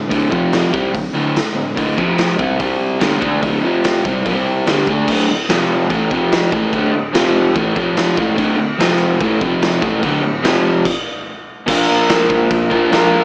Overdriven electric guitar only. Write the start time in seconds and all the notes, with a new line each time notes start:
0.09 D2 A2 D3
0.30 F2 C3 F3
0.71 C3 G3 C4
0.93 D2 A2
1.13 D2 A2 D3
1.55 D2 A2
1.75 D2 A2 D3
1.97 F2 C3 F3
2.37 C3 G3 C4
2.59 C3 G3 C4
3.00 G2 D3 G3
3.20 D3 A3 D4
3.42 D2 A2 D3
3.62 F2 C3 F3
4.04 C3 G3 C4
4.25 C3 G3 C4
4.66 G2 D3 G3
4.88 D3 A3 D4
5.09 D2 A2 D3
5.30 D2 A2
5.49 F2 C3 F3
5.90 A2 E3 A3
6.10 F2 C3 F3
6.52 A2 E3 A3
6.73 D2 A2 D3
6.93 D2 A2
7.13 F2 C3 F3
7.54 A2 E3 A3
7.75 F2 C3 F3
8.17 A2 E3 A3
8.36 D2 A2 D3
8.57 D2 A2
8.78 F2 C3 F3
9.20 A2 E3 A3
9.41 F2 C3 F3
9.81 A2 E3 A3
10.02 D2 A2 D3
10.23 D2 A2
10.43 F2 C3 F3
11.66 A#2 F3 A#3 D4
11.70 F4 A#4
12.70 F3 A#3 D4 F4 A#4
12.74 A#2
12.90 A#2 F3 A#3 D4
12.95 F4 A#4